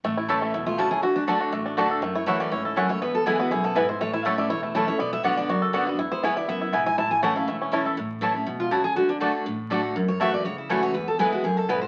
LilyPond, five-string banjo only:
\new Staff \with { instrumentName = "Five-string banjo" } { \time 4/4 \key a \major \tempo 4 = 242 a8 e'8 a'8 a8 e'8 a8 cis'8 e'8 | fis'4 d'8 fis'8 a8 d'8 fis'8 a'8 | a8 e'8 a8 cis'8 e'8 a'8 cis'8 a8 | b4 e'8 b8 e'8 b8 e'8 e'8 |
a8 e'8 a'8 a8 e'8 a8 cis'8 e'8 | b4 b8 d'8 fis'8 a'8 d'8 b8 | e'8 b8 e'8 e'8 b8 e'8 e'8 e'8 | e'4 cis'8 e'8 a8 cis'8 e'8 a'8 |
r1 | r1 | r1 | r1 | }